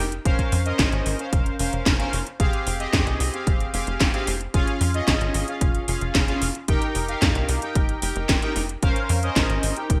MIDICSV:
0, 0, Header, 1, 4, 480
1, 0, Start_track
1, 0, Tempo, 535714
1, 229, Time_signature, 4, 2, 24, 8
1, 8960, End_track
2, 0, Start_track
2, 0, Title_t, "Analog polysynth"
2, 0, Program_c, 0, 90
2, 228, Note_on_c, 0, 61, 100
2, 228, Note_on_c, 0, 70, 92
2, 228, Note_on_c, 0, 72, 93
2, 228, Note_on_c, 0, 77, 108
2, 560, Note_off_c, 0, 61, 0
2, 560, Note_off_c, 0, 70, 0
2, 560, Note_off_c, 0, 72, 0
2, 560, Note_off_c, 0, 77, 0
2, 588, Note_on_c, 0, 61, 95
2, 588, Note_on_c, 0, 70, 85
2, 588, Note_on_c, 0, 75, 103
2, 589, Note_on_c, 0, 72, 85
2, 1040, Note_off_c, 0, 61, 0
2, 1040, Note_off_c, 0, 70, 0
2, 1040, Note_off_c, 0, 72, 0
2, 1040, Note_off_c, 0, 75, 0
2, 1068, Note_on_c, 0, 61, 74
2, 1068, Note_on_c, 0, 70, 68
2, 1068, Note_on_c, 0, 72, 70
2, 1068, Note_on_c, 0, 77, 86
2, 1400, Note_off_c, 0, 61, 0
2, 1400, Note_off_c, 0, 70, 0
2, 1400, Note_off_c, 0, 72, 0
2, 1400, Note_off_c, 0, 77, 0
2, 1428, Note_on_c, 0, 72, 71
2, 1428, Note_on_c, 0, 77, 88
2, 1429, Note_on_c, 0, 61, 80
2, 1429, Note_on_c, 0, 70, 72
2, 1760, Note_off_c, 0, 61, 0
2, 1760, Note_off_c, 0, 70, 0
2, 1760, Note_off_c, 0, 72, 0
2, 1760, Note_off_c, 0, 77, 0
2, 1788, Note_on_c, 0, 61, 93
2, 1788, Note_on_c, 0, 70, 89
2, 1788, Note_on_c, 0, 72, 84
2, 1788, Note_on_c, 0, 77, 109
2, 1951, Note_off_c, 0, 61, 0
2, 1951, Note_off_c, 0, 70, 0
2, 1951, Note_off_c, 0, 72, 0
2, 1951, Note_off_c, 0, 77, 0
2, 2149, Note_on_c, 0, 60, 99
2, 2149, Note_on_c, 0, 67, 90
2, 2149, Note_on_c, 0, 68, 91
2, 2149, Note_on_c, 0, 77, 113
2, 2480, Note_off_c, 0, 60, 0
2, 2480, Note_off_c, 0, 67, 0
2, 2480, Note_off_c, 0, 68, 0
2, 2480, Note_off_c, 0, 77, 0
2, 2508, Note_on_c, 0, 60, 91
2, 2508, Note_on_c, 0, 67, 88
2, 2508, Note_on_c, 0, 68, 87
2, 2508, Note_on_c, 0, 75, 103
2, 2960, Note_off_c, 0, 60, 0
2, 2960, Note_off_c, 0, 67, 0
2, 2960, Note_off_c, 0, 68, 0
2, 2960, Note_off_c, 0, 75, 0
2, 2989, Note_on_c, 0, 60, 76
2, 2989, Note_on_c, 0, 67, 69
2, 2989, Note_on_c, 0, 68, 70
2, 2989, Note_on_c, 0, 77, 84
2, 3320, Note_off_c, 0, 60, 0
2, 3320, Note_off_c, 0, 67, 0
2, 3320, Note_off_c, 0, 68, 0
2, 3320, Note_off_c, 0, 77, 0
2, 3348, Note_on_c, 0, 67, 75
2, 3348, Note_on_c, 0, 77, 92
2, 3349, Note_on_c, 0, 60, 80
2, 3349, Note_on_c, 0, 68, 76
2, 3680, Note_off_c, 0, 60, 0
2, 3680, Note_off_c, 0, 67, 0
2, 3680, Note_off_c, 0, 68, 0
2, 3680, Note_off_c, 0, 77, 0
2, 3708, Note_on_c, 0, 60, 96
2, 3708, Note_on_c, 0, 67, 90
2, 3709, Note_on_c, 0, 68, 85
2, 3709, Note_on_c, 0, 77, 105
2, 3871, Note_off_c, 0, 60, 0
2, 3871, Note_off_c, 0, 67, 0
2, 3872, Note_off_c, 0, 68, 0
2, 3872, Note_off_c, 0, 77, 0
2, 4069, Note_on_c, 0, 61, 99
2, 4069, Note_on_c, 0, 65, 92
2, 4069, Note_on_c, 0, 68, 90
2, 4069, Note_on_c, 0, 77, 110
2, 4400, Note_off_c, 0, 61, 0
2, 4400, Note_off_c, 0, 65, 0
2, 4400, Note_off_c, 0, 68, 0
2, 4400, Note_off_c, 0, 77, 0
2, 4429, Note_on_c, 0, 61, 91
2, 4429, Note_on_c, 0, 65, 86
2, 4429, Note_on_c, 0, 68, 86
2, 4429, Note_on_c, 0, 75, 104
2, 4880, Note_off_c, 0, 61, 0
2, 4880, Note_off_c, 0, 65, 0
2, 4880, Note_off_c, 0, 68, 0
2, 4880, Note_off_c, 0, 75, 0
2, 4909, Note_on_c, 0, 61, 76
2, 4909, Note_on_c, 0, 65, 71
2, 4909, Note_on_c, 0, 68, 67
2, 4909, Note_on_c, 0, 77, 86
2, 5240, Note_off_c, 0, 61, 0
2, 5240, Note_off_c, 0, 65, 0
2, 5240, Note_off_c, 0, 68, 0
2, 5240, Note_off_c, 0, 77, 0
2, 5270, Note_on_c, 0, 61, 78
2, 5270, Note_on_c, 0, 65, 74
2, 5270, Note_on_c, 0, 68, 75
2, 5270, Note_on_c, 0, 77, 91
2, 5600, Note_off_c, 0, 68, 0
2, 5601, Note_off_c, 0, 61, 0
2, 5601, Note_off_c, 0, 65, 0
2, 5601, Note_off_c, 0, 77, 0
2, 5629, Note_on_c, 0, 61, 96
2, 5629, Note_on_c, 0, 65, 87
2, 5629, Note_on_c, 0, 68, 92
2, 5629, Note_on_c, 0, 77, 110
2, 5792, Note_off_c, 0, 61, 0
2, 5792, Note_off_c, 0, 65, 0
2, 5792, Note_off_c, 0, 68, 0
2, 5792, Note_off_c, 0, 77, 0
2, 5989, Note_on_c, 0, 63, 104
2, 5989, Note_on_c, 0, 79, 112
2, 5990, Note_on_c, 0, 67, 93
2, 5990, Note_on_c, 0, 70, 91
2, 6320, Note_off_c, 0, 63, 0
2, 6320, Note_off_c, 0, 79, 0
2, 6321, Note_off_c, 0, 67, 0
2, 6321, Note_off_c, 0, 70, 0
2, 6349, Note_on_c, 0, 67, 85
2, 6349, Note_on_c, 0, 70, 85
2, 6349, Note_on_c, 0, 77, 103
2, 6350, Note_on_c, 0, 63, 92
2, 6800, Note_off_c, 0, 63, 0
2, 6800, Note_off_c, 0, 67, 0
2, 6800, Note_off_c, 0, 70, 0
2, 6800, Note_off_c, 0, 77, 0
2, 6829, Note_on_c, 0, 63, 79
2, 6829, Note_on_c, 0, 67, 70
2, 6829, Note_on_c, 0, 70, 69
2, 6829, Note_on_c, 0, 79, 86
2, 7160, Note_off_c, 0, 63, 0
2, 7160, Note_off_c, 0, 67, 0
2, 7160, Note_off_c, 0, 70, 0
2, 7160, Note_off_c, 0, 79, 0
2, 7189, Note_on_c, 0, 63, 79
2, 7189, Note_on_c, 0, 67, 77
2, 7189, Note_on_c, 0, 70, 74
2, 7189, Note_on_c, 0, 79, 91
2, 7520, Note_off_c, 0, 63, 0
2, 7520, Note_off_c, 0, 67, 0
2, 7520, Note_off_c, 0, 70, 0
2, 7520, Note_off_c, 0, 79, 0
2, 7549, Note_on_c, 0, 63, 97
2, 7549, Note_on_c, 0, 67, 87
2, 7549, Note_on_c, 0, 70, 88
2, 7549, Note_on_c, 0, 79, 108
2, 7712, Note_off_c, 0, 63, 0
2, 7712, Note_off_c, 0, 67, 0
2, 7712, Note_off_c, 0, 70, 0
2, 7712, Note_off_c, 0, 79, 0
2, 7909, Note_on_c, 0, 61, 99
2, 7909, Note_on_c, 0, 70, 95
2, 7909, Note_on_c, 0, 72, 94
2, 7909, Note_on_c, 0, 77, 112
2, 8240, Note_off_c, 0, 61, 0
2, 8240, Note_off_c, 0, 70, 0
2, 8240, Note_off_c, 0, 72, 0
2, 8240, Note_off_c, 0, 77, 0
2, 8269, Note_on_c, 0, 61, 95
2, 8269, Note_on_c, 0, 70, 84
2, 8269, Note_on_c, 0, 72, 89
2, 8269, Note_on_c, 0, 75, 103
2, 8720, Note_off_c, 0, 61, 0
2, 8720, Note_off_c, 0, 70, 0
2, 8720, Note_off_c, 0, 72, 0
2, 8720, Note_off_c, 0, 75, 0
2, 8749, Note_on_c, 0, 63, 75
2, 8749, Note_on_c, 0, 67, 72
2, 8749, Note_on_c, 0, 70, 69
2, 8749, Note_on_c, 0, 79, 86
2, 8960, Note_off_c, 0, 63, 0
2, 8960, Note_off_c, 0, 67, 0
2, 8960, Note_off_c, 0, 70, 0
2, 8960, Note_off_c, 0, 79, 0
2, 8960, End_track
3, 0, Start_track
3, 0, Title_t, "Analog synth bass"
3, 0, Program_c, 1, 38
3, 0, Note_on_c, 1, 29, 95
3, 173, Note_off_c, 1, 29, 0
3, 228, Note_on_c, 1, 29, 96
3, 320, Note_off_c, 1, 29, 0
3, 469, Note_on_c, 1, 41, 95
3, 653, Note_off_c, 1, 41, 0
3, 708, Note_on_c, 1, 32, 89
3, 800, Note_off_c, 1, 32, 0
3, 829, Note_on_c, 1, 32, 96
3, 921, Note_off_c, 1, 32, 0
3, 949, Note_on_c, 1, 32, 93
3, 1041, Note_off_c, 1, 32, 0
3, 1188, Note_on_c, 1, 29, 88
3, 1372, Note_off_c, 1, 29, 0
3, 1429, Note_on_c, 1, 29, 94
3, 1521, Note_off_c, 1, 29, 0
3, 1549, Note_on_c, 1, 29, 79
3, 1641, Note_off_c, 1, 29, 0
3, 1669, Note_on_c, 1, 29, 96
3, 1852, Note_off_c, 1, 29, 0
3, 1909, Note_on_c, 1, 29, 82
3, 2001, Note_off_c, 1, 29, 0
3, 2149, Note_on_c, 1, 29, 101
3, 2241, Note_off_c, 1, 29, 0
3, 2388, Note_on_c, 1, 29, 92
3, 2572, Note_off_c, 1, 29, 0
3, 2629, Note_on_c, 1, 41, 86
3, 2721, Note_off_c, 1, 41, 0
3, 2749, Note_on_c, 1, 36, 88
3, 2841, Note_off_c, 1, 36, 0
3, 2868, Note_on_c, 1, 36, 99
3, 2960, Note_off_c, 1, 36, 0
3, 3109, Note_on_c, 1, 29, 92
3, 3292, Note_off_c, 1, 29, 0
3, 3349, Note_on_c, 1, 29, 87
3, 3441, Note_off_c, 1, 29, 0
3, 3468, Note_on_c, 1, 29, 92
3, 3560, Note_off_c, 1, 29, 0
3, 3589, Note_on_c, 1, 29, 90
3, 3681, Note_off_c, 1, 29, 0
3, 3828, Note_on_c, 1, 29, 98
3, 4012, Note_off_c, 1, 29, 0
3, 4069, Note_on_c, 1, 29, 102
3, 4161, Note_off_c, 1, 29, 0
3, 4308, Note_on_c, 1, 41, 93
3, 4492, Note_off_c, 1, 41, 0
3, 4549, Note_on_c, 1, 32, 89
3, 4641, Note_off_c, 1, 32, 0
3, 4669, Note_on_c, 1, 32, 95
3, 4761, Note_off_c, 1, 32, 0
3, 4789, Note_on_c, 1, 32, 92
3, 4881, Note_off_c, 1, 32, 0
3, 5029, Note_on_c, 1, 29, 85
3, 5212, Note_off_c, 1, 29, 0
3, 5269, Note_on_c, 1, 29, 95
3, 5361, Note_off_c, 1, 29, 0
3, 5388, Note_on_c, 1, 29, 82
3, 5480, Note_off_c, 1, 29, 0
3, 5509, Note_on_c, 1, 29, 100
3, 5692, Note_off_c, 1, 29, 0
3, 5749, Note_on_c, 1, 29, 88
3, 5841, Note_off_c, 1, 29, 0
3, 5989, Note_on_c, 1, 29, 101
3, 6081, Note_off_c, 1, 29, 0
3, 6229, Note_on_c, 1, 29, 93
3, 6412, Note_off_c, 1, 29, 0
3, 6469, Note_on_c, 1, 41, 86
3, 6561, Note_off_c, 1, 41, 0
3, 6588, Note_on_c, 1, 36, 89
3, 6680, Note_off_c, 1, 36, 0
3, 6709, Note_on_c, 1, 36, 103
3, 6801, Note_off_c, 1, 36, 0
3, 6948, Note_on_c, 1, 29, 92
3, 7132, Note_off_c, 1, 29, 0
3, 7189, Note_on_c, 1, 29, 89
3, 7281, Note_off_c, 1, 29, 0
3, 7310, Note_on_c, 1, 29, 91
3, 7401, Note_off_c, 1, 29, 0
3, 7428, Note_on_c, 1, 29, 90
3, 7520, Note_off_c, 1, 29, 0
3, 7669, Note_on_c, 1, 29, 94
3, 7853, Note_off_c, 1, 29, 0
3, 7909, Note_on_c, 1, 29, 99
3, 8001, Note_off_c, 1, 29, 0
3, 8150, Note_on_c, 1, 41, 94
3, 8333, Note_off_c, 1, 41, 0
3, 8389, Note_on_c, 1, 32, 88
3, 8481, Note_off_c, 1, 32, 0
3, 8510, Note_on_c, 1, 32, 97
3, 8601, Note_off_c, 1, 32, 0
3, 8631, Note_on_c, 1, 32, 92
3, 8722, Note_off_c, 1, 32, 0
3, 8869, Note_on_c, 1, 27, 87
3, 8960, Note_off_c, 1, 27, 0
3, 8960, End_track
4, 0, Start_track
4, 0, Title_t, "Drums"
4, 108, Note_on_c, 9, 42, 38
4, 198, Note_off_c, 9, 42, 0
4, 228, Note_on_c, 9, 36, 127
4, 228, Note_on_c, 9, 42, 88
4, 318, Note_off_c, 9, 36, 0
4, 318, Note_off_c, 9, 42, 0
4, 348, Note_on_c, 9, 36, 63
4, 349, Note_on_c, 9, 42, 40
4, 438, Note_off_c, 9, 36, 0
4, 438, Note_off_c, 9, 42, 0
4, 468, Note_on_c, 9, 46, 105
4, 558, Note_off_c, 9, 46, 0
4, 588, Note_on_c, 9, 42, 39
4, 678, Note_off_c, 9, 42, 0
4, 708, Note_on_c, 9, 36, 124
4, 708, Note_on_c, 9, 38, 127
4, 708, Note_on_c, 9, 39, 104
4, 708, Note_on_c, 9, 42, 91
4, 798, Note_off_c, 9, 36, 0
4, 798, Note_off_c, 9, 38, 0
4, 798, Note_off_c, 9, 39, 0
4, 798, Note_off_c, 9, 42, 0
4, 828, Note_on_c, 9, 42, 39
4, 918, Note_off_c, 9, 42, 0
4, 949, Note_on_c, 9, 46, 108
4, 1038, Note_off_c, 9, 46, 0
4, 1069, Note_on_c, 9, 42, 40
4, 1158, Note_off_c, 9, 42, 0
4, 1189, Note_on_c, 9, 36, 124
4, 1189, Note_on_c, 9, 42, 86
4, 1278, Note_off_c, 9, 36, 0
4, 1278, Note_off_c, 9, 42, 0
4, 1309, Note_on_c, 9, 42, 37
4, 1398, Note_off_c, 9, 42, 0
4, 1428, Note_on_c, 9, 46, 106
4, 1518, Note_off_c, 9, 46, 0
4, 1549, Note_on_c, 9, 42, 38
4, 1638, Note_off_c, 9, 42, 0
4, 1669, Note_on_c, 9, 36, 126
4, 1669, Note_on_c, 9, 38, 126
4, 1669, Note_on_c, 9, 39, 102
4, 1669, Note_on_c, 9, 42, 92
4, 1758, Note_off_c, 9, 36, 0
4, 1759, Note_off_c, 9, 38, 0
4, 1759, Note_off_c, 9, 39, 0
4, 1759, Note_off_c, 9, 42, 0
4, 1789, Note_on_c, 9, 42, 40
4, 1878, Note_off_c, 9, 42, 0
4, 1909, Note_on_c, 9, 46, 108
4, 1999, Note_off_c, 9, 46, 0
4, 2030, Note_on_c, 9, 42, 35
4, 2119, Note_off_c, 9, 42, 0
4, 2149, Note_on_c, 9, 36, 123
4, 2149, Note_on_c, 9, 42, 91
4, 2238, Note_off_c, 9, 36, 0
4, 2239, Note_off_c, 9, 42, 0
4, 2269, Note_on_c, 9, 42, 39
4, 2359, Note_off_c, 9, 42, 0
4, 2390, Note_on_c, 9, 46, 107
4, 2479, Note_off_c, 9, 46, 0
4, 2510, Note_on_c, 9, 42, 39
4, 2599, Note_off_c, 9, 42, 0
4, 2629, Note_on_c, 9, 36, 121
4, 2629, Note_on_c, 9, 38, 123
4, 2629, Note_on_c, 9, 39, 102
4, 2629, Note_on_c, 9, 42, 93
4, 2719, Note_off_c, 9, 36, 0
4, 2719, Note_off_c, 9, 38, 0
4, 2719, Note_off_c, 9, 39, 0
4, 2719, Note_off_c, 9, 42, 0
4, 2749, Note_on_c, 9, 42, 38
4, 2839, Note_off_c, 9, 42, 0
4, 2869, Note_on_c, 9, 46, 106
4, 2959, Note_off_c, 9, 46, 0
4, 2990, Note_on_c, 9, 42, 38
4, 3079, Note_off_c, 9, 42, 0
4, 3109, Note_on_c, 9, 36, 127
4, 3109, Note_on_c, 9, 42, 90
4, 3199, Note_off_c, 9, 36, 0
4, 3199, Note_off_c, 9, 42, 0
4, 3230, Note_on_c, 9, 42, 38
4, 3319, Note_off_c, 9, 42, 0
4, 3349, Note_on_c, 9, 46, 105
4, 3438, Note_off_c, 9, 46, 0
4, 3469, Note_on_c, 9, 42, 39
4, 3559, Note_off_c, 9, 42, 0
4, 3588, Note_on_c, 9, 38, 116
4, 3588, Note_on_c, 9, 39, 95
4, 3588, Note_on_c, 9, 42, 90
4, 3589, Note_on_c, 9, 36, 121
4, 3678, Note_off_c, 9, 38, 0
4, 3678, Note_off_c, 9, 39, 0
4, 3678, Note_off_c, 9, 42, 0
4, 3679, Note_off_c, 9, 36, 0
4, 3708, Note_on_c, 9, 42, 40
4, 3798, Note_off_c, 9, 42, 0
4, 3829, Note_on_c, 9, 46, 114
4, 3918, Note_off_c, 9, 46, 0
4, 3948, Note_on_c, 9, 42, 37
4, 4038, Note_off_c, 9, 42, 0
4, 4069, Note_on_c, 9, 36, 116
4, 4069, Note_on_c, 9, 42, 93
4, 4159, Note_off_c, 9, 36, 0
4, 4159, Note_off_c, 9, 42, 0
4, 4188, Note_on_c, 9, 42, 43
4, 4278, Note_off_c, 9, 42, 0
4, 4308, Note_on_c, 9, 46, 112
4, 4398, Note_off_c, 9, 46, 0
4, 4429, Note_on_c, 9, 42, 41
4, 4519, Note_off_c, 9, 42, 0
4, 4549, Note_on_c, 9, 36, 117
4, 4549, Note_on_c, 9, 38, 117
4, 4549, Note_on_c, 9, 39, 101
4, 4549, Note_on_c, 9, 42, 95
4, 4638, Note_off_c, 9, 38, 0
4, 4638, Note_off_c, 9, 39, 0
4, 4638, Note_off_c, 9, 42, 0
4, 4639, Note_off_c, 9, 36, 0
4, 4669, Note_on_c, 9, 42, 41
4, 4758, Note_off_c, 9, 42, 0
4, 4788, Note_on_c, 9, 46, 112
4, 4878, Note_off_c, 9, 46, 0
4, 4909, Note_on_c, 9, 42, 43
4, 4999, Note_off_c, 9, 42, 0
4, 5028, Note_on_c, 9, 42, 93
4, 5029, Note_on_c, 9, 36, 119
4, 5118, Note_off_c, 9, 42, 0
4, 5119, Note_off_c, 9, 36, 0
4, 5149, Note_on_c, 9, 42, 38
4, 5238, Note_off_c, 9, 42, 0
4, 5268, Note_on_c, 9, 46, 114
4, 5358, Note_off_c, 9, 46, 0
4, 5389, Note_on_c, 9, 42, 41
4, 5478, Note_off_c, 9, 42, 0
4, 5508, Note_on_c, 9, 38, 113
4, 5508, Note_on_c, 9, 39, 97
4, 5508, Note_on_c, 9, 42, 92
4, 5509, Note_on_c, 9, 36, 123
4, 5598, Note_off_c, 9, 38, 0
4, 5598, Note_off_c, 9, 39, 0
4, 5598, Note_off_c, 9, 42, 0
4, 5599, Note_off_c, 9, 36, 0
4, 5629, Note_on_c, 9, 42, 41
4, 5718, Note_off_c, 9, 42, 0
4, 5749, Note_on_c, 9, 46, 116
4, 5838, Note_off_c, 9, 46, 0
4, 5868, Note_on_c, 9, 42, 38
4, 5958, Note_off_c, 9, 42, 0
4, 5988, Note_on_c, 9, 42, 97
4, 5989, Note_on_c, 9, 36, 114
4, 6077, Note_off_c, 9, 42, 0
4, 6078, Note_off_c, 9, 36, 0
4, 6108, Note_on_c, 9, 42, 43
4, 6197, Note_off_c, 9, 42, 0
4, 6227, Note_on_c, 9, 46, 111
4, 6317, Note_off_c, 9, 46, 0
4, 6348, Note_on_c, 9, 42, 41
4, 6437, Note_off_c, 9, 42, 0
4, 6468, Note_on_c, 9, 38, 117
4, 6468, Note_on_c, 9, 39, 105
4, 6468, Note_on_c, 9, 42, 99
4, 6469, Note_on_c, 9, 36, 115
4, 6558, Note_off_c, 9, 36, 0
4, 6558, Note_off_c, 9, 38, 0
4, 6558, Note_off_c, 9, 39, 0
4, 6558, Note_off_c, 9, 42, 0
4, 6588, Note_on_c, 9, 42, 43
4, 6678, Note_off_c, 9, 42, 0
4, 6708, Note_on_c, 9, 46, 116
4, 6797, Note_off_c, 9, 46, 0
4, 6828, Note_on_c, 9, 42, 43
4, 6918, Note_off_c, 9, 42, 0
4, 6948, Note_on_c, 9, 42, 93
4, 6949, Note_on_c, 9, 36, 117
4, 7038, Note_off_c, 9, 36, 0
4, 7038, Note_off_c, 9, 42, 0
4, 7068, Note_on_c, 9, 42, 39
4, 7158, Note_off_c, 9, 42, 0
4, 7188, Note_on_c, 9, 46, 120
4, 7277, Note_off_c, 9, 46, 0
4, 7308, Note_on_c, 9, 42, 42
4, 7398, Note_off_c, 9, 42, 0
4, 7428, Note_on_c, 9, 38, 116
4, 7428, Note_on_c, 9, 39, 98
4, 7428, Note_on_c, 9, 42, 94
4, 7429, Note_on_c, 9, 36, 117
4, 7518, Note_off_c, 9, 36, 0
4, 7518, Note_off_c, 9, 38, 0
4, 7518, Note_off_c, 9, 39, 0
4, 7518, Note_off_c, 9, 42, 0
4, 7548, Note_on_c, 9, 42, 42
4, 7638, Note_off_c, 9, 42, 0
4, 7668, Note_on_c, 9, 46, 120
4, 7758, Note_off_c, 9, 46, 0
4, 7789, Note_on_c, 9, 42, 41
4, 7878, Note_off_c, 9, 42, 0
4, 7908, Note_on_c, 9, 42, 103
4, 7909, Note_on_c, 9, 36, 119
4, 7997, Note_off_c, 9, 42, 0
4, 7998, Note_off_c, 9, 36, 0
4, 8028, Note_on_c, 9, 42, 44
4, 8118, Note_off_c, 9, 42, 0
4, 8148, Note_on_c, 9, 46, 112
4, 8237, Note_off_c, 9, 46, 0
4, 8269, Note_on_c, 9, 42, 43
4, 8358, Note_off_c, 9, 42, 0
4, 8389, Note_on_c, 9, 36, 120
4, 8389, Note_on_c, 9, 38, 122
4, 8389, Note_on_c, 9, 39, 107
4, 8389, Note_on_c, 9, 42, 104
4, 8478, Note_off_c, 9, 36, 0
4, 8478, Note_off_c, 9, 38, 0
4, 8478, Note_off_c, 9, 39, 0
4, 8478, Note_off_c, 9, 42, 0
4, 8509, Note_on_c, 9, 42, 43
4, 8599, Note_off_c, 9, 42, 0
4, 8629, Note_on_c, 9, 46, 112
4, 8718, Note_off_c, 9, 46, 0
4, 8749, Note_on_c, 9, 42, 43
4, 8839, Note_off_c, 9, 42, 0
4, 8869, Note_on_c, 9, 36, 121
4, 8870, Note_on_c, 9, 42, 96
4, 8958, Note_off_c, 9, 36, 0
4, 8959, Note_off_c, 9, 42, 0
4, 8960, End_track
0, 0, End_of_file